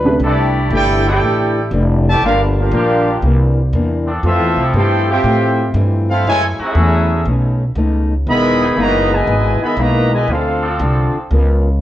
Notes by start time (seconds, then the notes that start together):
Already playing: D2 B4
0.05 C3 A3 D4 G4 B4
0.20 C2 C3 E3 G3 A3 C4 D4 A4
0.24 E3 A3 D4 E4 G4 D5
0.70 G1 C3 E3 A3 D4 E4 G4
0.74 E4 A4 D5 G5
1.06 E3 A3 C4 D4 E4 G4 A4 D5 G5
1.21 A1 C3 E3 A3
1.25 D4
1.71 F1 C3 E3 A3 D4
2.09 A2 E3 A3 G4 D5 E5 A5
2.22 G1 G2 F3 A#3 D4 F4
2.26 D4 G4 A#4 F5
2.57 A#3 D4 F4 G4 A#4 F5
2.72 A#1 G2 F3 A#3 D4 G4
3.22 C2 C3 E3 A#3 D4
3.73 E2 C3 E3 A#3 D4
4.07 F3 C4 D4 A4
4.23 F2 E3 A3 C4 F4 A4
4.27 E5
4.40 E2
4.56 C2 F3 C4 E4 A4
4.73 F2 G2 E3 A3 C4 E4 G4 A4 C5 G5
5.10 C4 F4 G4 C5 E5 G5
5.24 F2 A2 E3 A3 C4
5.74 F2 G2 E3 A3 C4
6.09 A3 C4 E4 F4 A4 F5
6.25 F#2 C#3 E3 F#3 G#3 A3 E4 A4 C#5 G#5
6.29 G#4
6.59 F#3 A3 C#4 E4 F#4, muted upright bass stroke
6.64 C#4 G#4 A4 E5
6.75 E2 F#3 A3 E4 G#4
7.25 B1 B2 A3 C#4 D#4
7.76 C#2 B2 A3 C#4 D#4
8.27 E1 D#3 E3 G#3 B3 D#4 G#4 D#5 E5 B5
8.60 E3 B3 D#4 G#4
8.76 F#1 E3 G#3 A#3 B3 D#4 B4 D#5
8.81 F#4 A#5
9.11 B2 E3 G#3 E4 B4 D#5 G#5
9.27 G#1 E3 G#3 B3 D#4
9.60 D#3 G#3 B3 G#4 D#5 E5 B5, muted upright bass stroke
9.76 B1 E3 G#3 A#3 B3
9.80 D#4 F#4 B4 D#5 A#5
10.10 B2 D#3 G#3 E4
10.14 B4 D#5 G#5
10.28 D2 D3 A3 C4 D4 F4 A4 C5 F5
10.32 A4
10.61 F3 C4 D4 A4
10.79 C2 D3 C4 F4 A4
11.13 muted upright bass stroke
11.31 C#2 C#3 B3 F4 A#4